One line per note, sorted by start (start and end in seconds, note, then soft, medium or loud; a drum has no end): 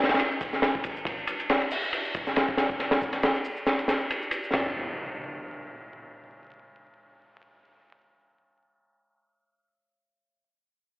0.00 1.02 G#3 medium
0.00 1.02 A3 medium
0.00 1.02 C#4 medium
0.00 snare medium
0.00 ride medium
0.09 snare medium
0.09 ride medium
0.09 shaker soft
0.14 snare medium
0.14 ride medium
0.19 ride medium
0.19 shaker soft
0.31 shaker soft
0.41 kick medium
0.41 ride medium
0.41 shaker medium
0.53 snare soft
0.53 shaker soft
0.62 snare loud
0.62 ride medium
0.62 shaker soft
0.75 kick medium
0.75 shaker soft
0.84 kick medium
0.84 ride medium
0.84 shaker medium
0.96 shaker soft
1.05 kick loud
1.05 ride medium
1.05 shaker soft
1.18 shaker soft
1.27 ride medium
1.27 shaker medium
1.40 ride soft
1.40 shaker soft
1.49 snare loud
1.49 ride medium
1.49 shaker soft
1.61 ride soft
1.61 shaker soft
1.71 open hi-hat medium
1.71 shaker medium
1.83 shaker soft
1.93 ride medium
1.93 shaker soft
2.05 shaker soft
2.14 kick medium
2.14 ride medium
2.14 shaker medium
2.27 snare soft
2.27 shaker soft
2.36 snare loud
2.36 ride medium
2.36 shaker soft
2.48 kick medium
2.48 shaker soft
2.57 snare medium
2.57 ride medium
2.57 shaker medium
2.69 kick medium
2.69 shaker soft
2.80 snare soft
2.80 ride medium
2.80 shaker soft
2.91 snare loud
2.91 ride medium
2.91 shaker soft
3.02 kick medium
3.02 shaker medium
3.13 snare soft
3.13 ride medium
3.13 shaker soft
3.23 snare loud
3.23 ride medium
3.23 shaker soft
3.35 shaker soft
3.45 shaker medium
3.57 shaker soft
3.66 snare medium
3.66 ride medium
3.66 shaker soft
3.79 ride soft
3.79 shaker soft
3.88 snare medium
3.88 ride medium
3.88 shaker medium
4.01 shaker soft
4.10 ride medium
4.10 shaker soft
4.22 shaker soft
4.31 ride medium
4.31 shaker medium
4.44 shaker soft
4.54 snare medium
4.54 floor tom medium
4.54 ride bell medium
4.54 impact medium